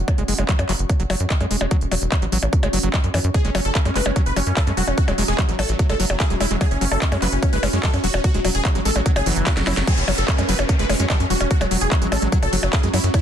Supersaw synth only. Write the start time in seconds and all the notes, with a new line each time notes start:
3.34 G#4
3.45 C#4
3.55 C#4
3.65 A4
3.75 C#4
3.85 C#4
3.96 B4
4.06 C#4
4.16 C#4
4.26 B4
4.36 C#4
4.47 C#4
4.57 A4
4.67 C#4
4.77 F#4
4.87 C#4
4.98 F#4
5.08 F#3
5.18 F#3
5.28 G#4
5.38 F#3
5.49 F#3
5.59 A4
5.69 F#3
5.79 F#3
5.89 A4
6.00 F#3
6.10 F#3
6.20 G#4
6.30 F#3
6.41 E4
6.51 F#3
6.61 G#4
6.71 C#4
6.81 C#4
6.92 A4
7.02 C#4
7.12 C#4
7.22 B4
7.32 C#4
7.43 C#4
7.53 B4
7.63 C#4
7.73 C#4
7.83 A4
7.94 C#4
8.04 F#4
8.14 C#4
8.24 F#4
8.34 F#3
8.45 F#3
8.55 G#4
8.65 F#3
8.75 F#3
8.85 A4
8.96 F#3
9.06 F#3
9.16 G#4
9.26 F#3
9.36 F#3
9.47 F#4
9.57 F#3
9.67 E4
9.77 F#3
9.87 G#4
9.98 C#4
10.08 C#4
10.18 A4
10.28 C#4
10.38 C#4
10.49 B4
10.59 C#4
10.69 C#4
10.79 B4
10.90 C#4
11.00 C#4
11.10 A4
11.20 C#4
11.30 F#4
11.41 C#4
11.51 F#4
11.61 F#3
11.71 F#3
11.81 G#4
11.92 F#3
12.02 F#3
12.12 A4
12.22 F#3
12.32 F#3
12.43 A4
12.53 F#3
12.63 F#3
12.73 G#4
12.83 F#3
12.94 E4
13.04 F#3
13.14 E4